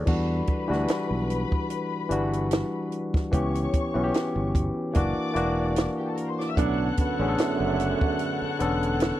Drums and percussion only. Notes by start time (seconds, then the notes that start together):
0.07 kick, crash
0.47 kick, closed hi-hat
0.72 snare
0.88 snare, closed hi-hat
1.30 closed hi-hat
1.52 kick
1.70 closed hi-hat
2.11 closed hi-hat
2.33 closed hi-hat
2.51 snare, closed hi-hat
2.92 closed hi-hat
3.14 kick, snare
3.33 kick, closed hi-hat
3.55 closed hi-hat
3.73 kick, closed hi-hat
4.14 snare, closed hi-hat
4.55 kick, closed hi-hat
4.95 kick, closed hi-hat
5.36 closed hi-hat
5.76 snare, closed hi-hat
6.17 closed hi-hat
6.40 snare
6.57 kick, closed hi-hat
6.97 kick, closed hi-hat
7.38 snare, closed hi-hat
7.80 closed hi-hat
8.01 kick
8.19 closed hi-hat
8.60 closed hi-hat
8.83 closed hi-hat
9.00 snare, closed hi-hat